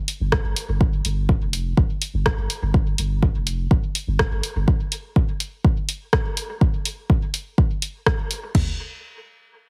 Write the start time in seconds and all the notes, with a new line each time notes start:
0.08 open hi-hat
0.20 G1
0.32 kick, cross-stick
0.44 G1
0.56 open hi-hat
0.69 G1
0.81 kick
1.05 G1, open hi-hat
1.29 kick
1.41 F1
1.53 open hi-hat
1.77 G1, kick
2.02 open hi-hat
2.14 G1
2.26 kick, cross-stick
2.38 G1
2.50 open hi-hat
2.62 G1
2.74 kick
2.98 G1, open hi-hat
3.23 kick
3.35 F1
3.47 open hi-hat
3.71 G1, kick
3.95 open hi-hat
4.07 G1
4.19 kick, cross-stick
4.31 G1
4.43 open hi-hat
4.56 G1
4.68 kick
4.92 open hi-hat
5.16 kick
5.40 open hi-hat
5.64 kick
5.89 open hi-hat
6.13 kick, cross-stick
6.37 open hi-hat
6.61 kick
6.85 open hi-hat
7.10 kick
7.34 open hi-hat
7.58 kick
7.82 open hi-hat
8.06 kick, cross-stick
8.31 open hi-hat
8.55 kick, floor tom, crash